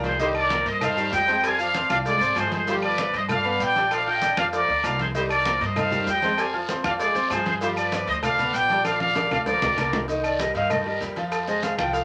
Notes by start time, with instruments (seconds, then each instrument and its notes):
Already playing: upright bass C2, grand piano A#4 D5 F5 A#5
0.04 trumpet section G#4 C5, cowbell, high conga, low timbale, short guiro, maracas
0.19 grand piano D#3 D#4 D#5, trombone section G3, trumpet section G4 C5, cowbell, high conga, long guiro, maracas
0.35 trumpet section A#4 D5, high conga, low agogo, claves
0.50 trombone section F3, grand piano A#3 A#4 A#5, cowbell, high conga, low agogo, short guiro, maracas
0.66 upright bass G2, trumpet section C5 D#5, cowbell, high conga, short guiro, maracas
0.81 grand piano D#4 D#5 D#6, trumpet section C5 F5, cowbell, high conga, low conga, low agogo, long guiro, claves, maracas
0.96 trombone section D#3, grand piano G3 G4 G5, high conga, low agogo, maracas
1.12 upright bass F2, trumpet section D#5 G5, cowbell, high conga, low timbale, short guiro, maracas
1.28 trombone section G#3, grand piano C4 C5 C6, cowbell, low agogo, short guiro, maracas
1.43 trombone section G3, trumpet section F5 G#5, cowbell, high conga, low agogo, long guiro, claves, maracas
1.58 trombone section F3, grand piano F4 F5 F6, trumpet section D5 F5, high conga, low agogo, maracas
1.74 grand piano C4 C5 C6, cowbell, high conga, low agogo, short guiro, maracas
1.90 upright bass C2, grand piano F4 F5 F6, trumpet section D5 F5, high conga, low agogo, short guiro, claves, maracas
2.05 trombone section G#3, trumpet section G#4 D5, cowbell, high conga, long guiro, maracas
2.20 upright bass G#1, grand piano C4 C5 C6, high conga, low agogo, maracas
2.36 upright bass G1, trombone section F3, grand piano G#3 G#4 G#5, trumpet section G#4 C5, cowbell, high conga, low timbale, low agogo, short guiro, claves, maracas
2.52 trumpet section G#4 C5, cowbell, high conga, short guiro, maracas
2.67 grand piano F3 F4 F5, trombone section G3, trumpet section G4 C5, cowbell, high conga, long guiro, maracas
2.83 trumpet section B4 D5, high conga, low agogo, claves
2.98 trombone section F3, grand piano D4 D5 D6, cowbell, high conga, low agogo, short guiro, maracas
3.13 upright bass G2, trumpet section C5 D#5, cowbell, high conga, short guiro, maracas
3.29 grand piano F4 F5 F6, trumpet section D5 F5, cowbell, high conga, low conga, low agogo, long guiro, claves, maracas
3.44 trombone section D3, grand piano B3 B4 B5, high conga, low agogo
3.60 upright bass A#1, trumpet section D5 G5, cowbell, high conga, short guiro, maracas
3.75 trombone section G3, grand piano D4 D5 D6, cowbell, high conga, low agogo, short guiro, maracas
3.91 trombone section F3, trumpet section D5 F5, cowbell, high conga, low agogo, long guiro, claves, maracas
4.06 trombone section D3, grand piano F4 F5 F6, trumpet section D#5 G5, high conga, low agogo
4.21 grand piano D4 D5 D6, cowbell, high conga, low agogo, short guiro, maracas
4.37 upright bass F2, grand piano F4 F5 F6, trumpet section D5 F5, high conga, low agogo, short guiro, claves, maracas
4.53 trombone section F3, trumpet section A#4 D5, cowbell, high conga, long guiro, maracas
4.68 upright bass D2, grand piano D4 D5 D6, high conga, low agogo
4.84 upright bass C2, trombone section D3, grand piano A#3 A#4 A#5, trumpet section D5 F5, cowbell, high conga, low timbale, low agogo, short guiro, claves, maracas
4.99 trumpet section G#4 C5, cowbell, high conga, short guiro, maracas
5.14 grand piano D#3 D#4 D#5, trombone section G3, trumpet section G4 C5, cowbell, high conga, long guiro, maracas
5.30 trumpet section A#4 D5, high conga, low agogo, claves, maracas
5.45 trombone section F3, grand piano A#3 A#4 A#5, cowbell, high conga, low agogo, short guiro, maracas
5.61 upright bass G2, trumpet section C5 D#5, cowbell, high conga, short guiro, maracas
5.76 grand piano D#4 D#5 D#6, trumpet section C5 F5, cowbell, high conga, low conga, low agogo, long guiro, claves, maracas
5.91 trombone section D#3, grand piano G3 G4 G5, high conga, low conga, low agogo, maracas
6.07 upright bass F2, trumpet section D#5 G5, cowbell, high conga, low timbale, short guiro, maracas
6.22 trombone section G#3, grand piano C4 C5 C6, cowbell, high conga, low agogo, short guiro, maracas
6.38 trombone section G3, trumpet section F5 G#5, cowbell, high conga, low agogo, long guiro, claves, maracas
6.53 trombone section F3, grand piano F4 F5 F6, high conga, low agogo
6.68 grand piano C4 C5 C6, cowbell, high conga, low agogo, short guiro, maracas
6.84 upright bass F2, grand piano F4 F5 F6, trumpet section D5 F5, high conga, low agogo, short guiro, claves, maracas
6.99 trombone section G#3, trumpet section G#4 D5, cowbell, high conga, long guiro, maracas
7.15 upright bass F2, grand piano C4 C5 C6, high conga, low agogo, maracas
7.30 upright bass G2, trombone section F3, grand piano F3 G#4 G#5, trumpet section G#4 C5, cowbell, high conga, low timbale, low agogo, short guiro, claves, maracas
7.46 trumpet section G#4 C5, cowbell, high conga, short guiro, maracas
7.61 grand piano F3 F4 F5, trombone section G3, trumpet section G4 C5, cowbell, high conga, long guiro, maracas
7.76 trumpet section B4 D5, high conga, low agogo, claves, maracas
7.92 trombone section F3, grand piano D4 D5 D6, cowbell, high conga, low agogo, short guiro, maracas
8.07 upright bass D2, trumpet section C5 D#5, cowbell, high conga, short guiro, maracas
8.22 grand piano F4 F5 F6, trumpet section D5 F5, cowbell, high conga, low conga, low agogo, long guiro, claves, maracas
8.38 trombone section D3, grand piano B3 B4 B5, high conga, low conga, low agogo, maracas
8.53 upright bass A#1, trumpet section D5 G5, cowbell, high conga, short guiro, maracas
8.69 trombone section G3, grand piano D4 D5 D6, cowbell, high conga, low agogo, short guiro, maracas
8.84 trombone section F3, trumpet section D5 F5, cowbell, high conga, low agogo, long guiro, claves, maracas
8.99 trombone section D3, grand piano F4 F5 F6, trumpet section D5 F5, high conga, low agogo
9.15 grand piano D4 D5 D6, cowbell, high bongo, high conga, high timbale, low agogo, short guiro, maracas
9.31 upright bass D2, grand piano F4 F5 F6, trumpet section D5 F5, low conga, high timbale, low agogo, short guiro, claves, maracas
9.46 trombone section F3, trumpet section A#4 D5, cowbell, low bongo, long guiro, maracas
9.62 upright bass D2, grand piano D4 D5 D6, low bongo, low conga, low timbale, low agogo, maracas
9.77 upright bass C2, trombone section D3, grand piano A#3 A#4 A#5, trumpet section A#4 D5, cowbell, low bongo, low conga, low agogo, short guiro, claves, maracas
9.93 cowbell, low bongo, low conga, low timbale, short guiro, maracas
10.08 grand piano D#3 D#4 D#5, cowbell, high conga, long guiro, maracas
10.24 flute D5, high conga, low agogo, claves, maracas
10.39 grand piano G3 G4 A#4, flute D#5, cowbell, high conga, low agogo, short guiro, maracas
10.55 upright bass G2, grand piano D#3 D#4 D#5, flute F5, cowbell, high conga, short guiro, maracas
10.70 flute D#5, cowbell, high conga, low conga, low agogo, long guiro, claves, maracas
10.86 grand piano G3 G4 A#4, high conga, low agogo
11.01 upright bass F2, grand piano G3 G4 A#4, cowbell, high conga, short guiro, maracas
11.16 grand piano F3 F4 F5, cowbell, high conga, low agogo, short guiro, maracas
11.32 cowbell, high conga, low agogo, long guiro, claves, maracas
11.47 grand piano G#3 G#4 C5, flute D#5, high conga, low agogo, maracas
11.63 flute F5, cowbell, high conga, low agogo, short guiro, maracas
11.78 upright bass C2, grand piano F3 F4 F5, flute G5, high conga, low agogo, short guiro, claves, maracas
11.93 flute F5, cowbell, high conga, long guiro, maracas